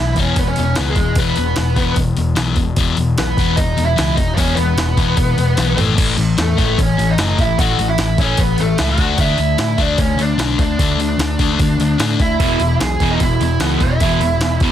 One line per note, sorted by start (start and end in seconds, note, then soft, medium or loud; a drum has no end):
0.00 0.13 B1 medium
0.00 0.16 E2 medium
0.00 0.16 B2 medium
0.00 0.13 E4 medium
0.00 0.13 E5 medium
0.16 0.31 E1 medium
0.16 0.36 E2 medium
0.16 0.37 B2 medium
0.16 0.37 E3 medium
0.16 0.37 C#4 medium
0.16 0.39 C#5 medium
0.16 kick medium
0.16 open hi-hat medium
0.36 0.51 E1 medium
0.36 0.56 E2 medium
0.36 0.56 B2 medium
0.36 0.48 B3 medium
0.36 0.48 B4 medium
0.36 kick loud
0.36 open hi-hat medium
0.48 0.76 C#4 medium
0.48 0.78 C#5 medium
0.56 0.73 E1 medium
0.56 0.76 E2 medium
0.56 0.76 B2 medium
0.56 open hi-hat medium
0.75 0.93 C#2 medium
0.75 0.96 E2 medium
0.75 0.96 B2 medium
0.75 0.97 E3 loud
0.75 0.87 B3 medium
0.75 0.88 B4 medium
0.75 snare loud
0.75 open hi-hat medium
0.89 1.16 G#3 medium
0.89 1.19 G#4 medium
0.96 1.11 E1 medium
0.96 1.17 E2 medium
0.96 1.16 B2 medium
0.96 kick medium
0.96 open hi-hat medium
1.15 1.31 E1 medium
1.15 1.37 E2 medium
1.15 1.37 B2 medium
1.15 1.37 E3 medium
1.15 1.94 B3 medium
1.15 1.94 B4 medium
1.15 kick loud
1.15 open hi-hat medium
1.36 1.52 E1 medium
1.36 1.56 E2 medium
1.36 1.56 B2 medium
1.36 open hi-hat medium
1.56 1.72 E1 medium
1.56 1.75 E2 medium
1.56 1.75 B2 medium
1.56 snare loud
1.56 open hi-hat medium
1.76 1.91 E1 medium
1.76 1.96 E2 medium
1.76 1.96 B2 medium
1.76 1.96 E3 loud
1.76 kick medium
1.76 open hi-hat medium
1.96 2.11 E1 medium
1.96 2.15 E2 medium
1.96 2.16 B2 medium
1.96 kick loud
1.96 open hi-hat medium
2.17 2.32 E1 medium
2.17 2.34 E2 medium
2.17 2.35 B2 medium
2.17 open hi-hat soft
2.35 2.52 B1 medium
2.35 2.56 E2 medium
2.35 2.56 B2 medium
2.35 2.56 E3 medium
2.35 snare loud
2.35 open hi-hat medium
2.56 2.71 E1 medium
2.56 2.76 E2 medium
2.56 2.76 B2 medium
2.56 kick medium
2.56 open hi-hat medium
2.76 2.92 E1 medium
2.76 2.97 E2 medium
2.76 2.97 B2 medium
2.76 2.97 E3 medium
2.76 kick loud
2.76 open hi-hat medium
2.97 3.12 E1 medium
2.97 3.16 E2 medium
2.97 3.17 B2 medium
2.97 open hi-hat medium
3.18 3.33 B1 medium
3.18 3.36 E2 medium
3.18 3.37 B2 medium
3.18 3.56 B3 medium
3.18 3.56 B4 medium
3.18 snare loud
3.18 open hi-hat medium
3.37 3.53 E1 medium
3.37 3.57 E2 medium
3.37 3.57 B2 medium
3.37 3.58 E3 loud
3.37 kick medium
3.37 open hi-hat medium
3.56 3.72 E1 loud
3.56 3.76 E2 medium
3.56 3.77 B2 medium
3.56 3.87 D#4 medium
3.56 3.85 D#5 loud
3.56 kick loud
3.56 open hi-hat medium
3.77 3.93 E1 medium
3.77 3.95 E2 medium
3.77 3.95 B2 medium
3.77 open hi-hat medium
3.85 4.16 E4 medium
3.85 4.15 E5 medium
3.96 4.13 C#2 medium
3.96 4.16 E2 medium
3.96 4.16 B2 medium
3.96 4.17 E3 medium
3.96 snare loud
3.96 open hi-hat medium
4.15 4.33 E1 medium
4.15 4.36 E2 medium
4.15 4.36 B2 medium
4.15 4.36 D#4 medium
4.15 4.38 D#5 loud
4.15 kick medium
4.15 open hi-hat medium
4.34 4.56 E2 medium
4.34 4.56 B2 medium
4.34 4.56 C#4 medium
4.34 4.55 C#5 loud
4.34 kick loud
4.38 4.53 E1 medium
4.38 4.57 E3 loud
4.38 open hi-hat medium
4.55 4.73 E1 medium
4.55 4.76 E2 medium
4.55 4.76 B2 medium
4.55 5.77 B4 medium
4.55 open hi-hat medium
4.59 5.75 B3 medium
4.77 4.92 E1 medium
4.77 4.96 E2 medium
4.77 4.96 B2 medium
4.77 snare loud
4.77 open hi-hat medium
4.97 5.12 E1 medium
4.97 5.16 E2 medium
4.97 5.17 B2 medium
4.97 5.17 E3 loud
4.97 kick medium
4.97 open hi-hat medium
5.17 5.32 E1 medium
5.17 5.36 E2 medium
5.17 5.36 B2 medium
5.17 kick loud
5.17 open hi-hat medium
5.37 5.52 E1 medium
5.37 5.56 E2 medium
5.37 5.57 B2 medium
5.37 open hi-hat medium
5.57 5.73 B1 medium
5.57 5.77 E2 medium
5.57 5.76 B2 medium
5.57 5.75 E3 medium
5.57 snare medium
5.57 open hi-hat medium
5.76 5.92 A1 medium
5.76 5.94 A2 medium
5.76 5.95 E3 medium
5.76 5.95 A3 medium
5.76 floor tom medium
5.76 open hi-hat medium
5.95 6.13 A1 medium
5.95 6.15 A2 medium
5.95 6.16 E3 medium
5.95 6.16 A3 medium
5.95 kick loud
5.95 open hi-hat medium
5.95 crash medium
6.16 6.33 A1 medium
6.16 6.36 A2 medium
6.16 6.36 E3 medium
6.16 open hi-hat soft
6.37 6.53 E2 medium
6.37 6.56 A2 medium
6.37 6.56 E3 medium
6.37 6.77 A3 medium
6.37 snare loud
6.37 open hi-hat medium
6.42 6.78 A4 medium
6.57 6.73 A1 medium
6.57 6.77 A2 medium
6.57 6.77 E3 medium
6.57 6.77 A3 medium
6.57 kick medium
6.57 open hi-hat medium
6.78 6.94 A1 medium
6.78 6.96 A2 medium
6.78 6.97 E3 medium
6.78 7.08 C#4 medium
6.78 7.11 C#5 medium
6.78 kick loud
6.78 open hi-hat medium
6.97 7.13 A1 medium
6.97 7.16 A2 medium
6.97 7.16 E3 medium
6.97 open hi-hat medium
7.09 7.37 D#4 medium
7.09 7.41 D#5 medium
7.18 7.33 F#1 medium
7.18 7.38 A2 medium
7.18 7.38 E3 medium
7.18 7.38 A3 medium
7.18 snare loud
7.18 open hi-hat medium
7.38 7.53 A1 medium
7.38 7.58 A2 medium
7.38 7.58 E3 medium
7.38 7.58 E4 medium
7.38 7.59 E5 medium
7.38 kick medium
7.38 open hi-hat medium
7.58 7.73 A1 medium
7.58 7.78 A2 medium
7.58 7.79 E3 medium
7.58 7.79 A3 medium
7.58 7.87 F#4 medium
7.58 7.89 F#5 medium
7.58 kick loud
7.58 open hi-hat medium
7.79 7.94 A1 medium
7.79 7.98 A2 medium
7.79 7.98 E3 medium
7.79 open hi-hat medium
7.89 8.17 E4 medium
7.89 8.17 E5 medium
7.98 8.13 A1 medium
7.98 8.18 A2 medium
7.98 8.18 E3 medium
7.98 snare loud
7.98 open hi-hat medium
8.18 8.33 A1 medium
8.18 8.39 A2 medium
8.18 8.39 E3 medium
8.18 8.39 A3 medium
8.18 8.38 C#4 medium
8.18 8.41 C#5 medium
8.18 kick medium
8.18 open hi-hat medium
8.37 8.53 A1 medium
8.37 8.58 E3 medium
8.37 8.58 B3 medium
8.37 8.60 B4 medium
8.37 kick loud
8.37 open hi-hat medium
8.41 8.58 A2 medium
8.58 8.74 A1 medium
8.58 8.78 A2 medium
8.58 8.78 E3 medium
8.58 8.78 A3 medium
8.58 8.79 A4 medium
8.58 open hi-hat medium
8.78 8.94 C#2 medium
8.78 8.98 A2 medium
8.78 8.99 E3 medium
8.78 8.99 A3 medium
8.78 8.89 E4 medium
8.78 8.89 E5 medium
8.78 snare loud
8.78 open hi-hat medium
8.88 9.17 F#4 medium
8.88 9.19 F#5 medium
8.98 9.13 D2 medium
8.98 9.18 D3 medium
8.98 9.19 A3 medium
8.98 9.19 D4 loud
8.98 kick medium
8.98 open hi-hat medium
9.18 9.33 D2 medium
9.18 9.37 D3 medium
9.18 9.38 A3 medium
9.18 9.39 D4 medium
9.18 9.76 E4 medium
9.18 9.82 E5 loud
9.18 kick loud
9.18 open hi-hat medium
9.38 9.53 D2 medium
9.38 9.57 D3 medium
9.38 9.57 A3 medium
9.38 open hi-hat soft
9.58 9.74 A2 medium
9.58 9.77 D3 medium
9.58 9.77 A3 medium
9.58 snare loud
9.58 open hi-hat medium
9.78 9.94 D2 medium
9.78 9.97 D3 medium
9.78 9.97 A3 loud
9.78 9.98 D4 loud
9.78 9.98 D4 medium
9.78 9.99 D5 medium
9.78 kick medium
9.78 open hi-hat soft
9.98 10.13 D2 medium
9.98 10.17 D3 medium
9.98 10.17 A3 medium
9.98 10.18 C#4 medium
9.98 10.22 C#5 medium
9.98 kick loud
9.98 open hi-hat medium
10.16 10.32 D2 medium
10.16 10.37 D3 medium
10.16 10.37 A3 medium
10.16 open hi-hat medium
10.22 10.58 D4 medium
10.22 10.59 D5 medium
10.38 10.53 B1 medium
10.38 10.58 D3 medium
10.38 10.58 A3 medium
10.38 10.58 D4 medium
10.38 snare loud
10.38 open hi-hat medium
10.59 10.74 D2 medium
10.59 10.78 D3 medium
10.59 10.78 A3 medium
10.59 12.17 D4 medium
10.59 12.17 D5 medium
10.59 kick medium
10.59 open hi-hat medium
10.79 10.94 D2 medium
10.79 10.99 D3 medium
10.79 10.99 A3 medium
10.79 10.99 D4 medium
10.79 kick loud
10.79 open hi-hat medium
10.97 11.13 D2 medium
10.97 11.18 D3 medium
10.97 11.18 A3 medium
10.97 open hi-hat medium
11.19 11.34 D2 medium
11.19 11.38 D3 medium
11.19 11.38 A3 medium
11.19 snare loud
11.19 open hi-hat medium
11.39 11.54 D2 medium
11.39 11.59 D3 medium
11.39 11.59 A3 medium
11.39 11.59 D4 medium
11.39 kick medium
11.39 open hi-hat medium
11.59 11.74 D2 medium
11.59 11.79 D3 medium
11.59 11.79 A3 medium
11.59 kick loud
11.59 open hi-hat medium
11.78 11.94 D2 medium
11.78 11.97 D3 medium
11.78 11.99 A3 medium
11.78 open hi-hat medium
11.98 12.14 A2 medium
11.98 12.18 D3 medium
11.98 12.19 A3 medium
11.98 12.19 D4 medium
11.98 snare loud
11.98 open hi-hat medium
12.20 12.35 D2 medium
12.20 12.38 D3 medium
12.20 12.39 A3 medium
12.20 12.77 E4 medium
12.20 12.77 E5 medium
12.20 kick medium
12.20 open hi-hat soft
12.40 12.55 E1 medium
12.40 12.60 E2 medium
12.40 12.60 B2 medium
12.40 12.60 E3 medium
12.40 kick loud
12.40 open hi-hat medium
12.60 12.75 E1 medium
12.60 12.79 E2 medium
12.60 12.79 B2 medium
12.60 open hi-hat medium
12.80 12.95 B1 medium
12.80 12.99 E2 medium
12.80 12.99 B2 medium
12.80 13.09 G#4 medium
12.80 13.11 G#5 loud
12.80 snare loud
12.80 open hi-hat medium
13.00 13.15 E1 medium
13.00 13.19 E2 medium
13.00 13.20 B2 loud
13.00 13.21 E3 loud
13.00 kick medium
13.00 open hi-hat soft
13.11 13.21 D#4 medium
13.11 13.21 D#5 medium
13.20 13.35 E1 medium
13.20 13.39 E2 medium
13.20 13.39 B2 medium
13.20 13.59 E4 medium
13.20 13.59 E5 medium
13.20 kick loud
13.20 open hi-hat medium
13.41 13.56 E1 medium
13.41 13.59 E2 medium
13.41 13.60 B2 medium
13.41 open hi-hat medium
13.60 13.75 C#2 medium
13.60 13.80 E2 medium
13.60 13.80 B2 medium
13.60 13.80 E3 medium
13.60 13.81 B3 medium
13.60 13.82 B4 medium
13.60 snare loud
13.60 open hi-hat medium
13.81 13.96 E1 medium
13.81 13.99 E2 medium
13.81 13.99 B2 medium
13.81 14.58 E4 medium
13.81 14.58 E5 medium
13.81 kick medium
13.81 open hi-hat medium
14.00 14.16 E1 medium
14.00 14.20 E2 medium
14.00 14.20 B2 medium
14.00 14.21 E3 medium
14.00 kick loud
14.00 open hi-hat medium
14.19 14.35 E1 medium
14.19 14.39 E2 medium
14.19 14.40 B2 medium
14.19 open hi-hat medium
14.40 14.55 E1 medium
14.40 14.60 E2 medium
14.40 14.61 B2 medium
14.40 snare loud
14.40 open hi-hat medium
14.60 14.72 E1 medium
14.60 14.72 E2 medium
14.60 14.72 B2 medium
14.60 14.72 E3 loud
14.60 kick medium
14.60 open hi-hat medium